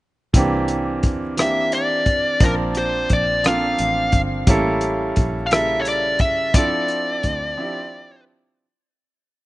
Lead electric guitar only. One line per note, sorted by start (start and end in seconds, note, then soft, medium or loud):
1.40 1.74 E5 medium
1.74 2.44 D5 medium
2.44 2.53 A#4 medium
2.78 3.12 C5 medium
3.13 3.47 D5 medium
3.47 4.19 F5 medium
5.47 5.52 F5 medium
5.53 5.80 E5 medium
5.81 5.87 C#5 medium
5.88 6.19 D5 medium
6.21 6.55 E5 medium
6.55 8.23 D5 medium